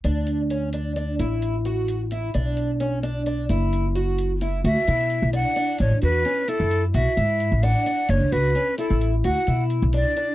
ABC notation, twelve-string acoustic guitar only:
X:1
M:5/8
L:1/8
Q:1/4=130
K:Dlyd
V:1 name="Twelve-string acoustic guitar"
D2 C D D | E2 F2 E | D2 C D D | E2 F2 E |
F E2 D D- | D F C E2 | F E2 D D- | D F C E2 |
F E2 D D |]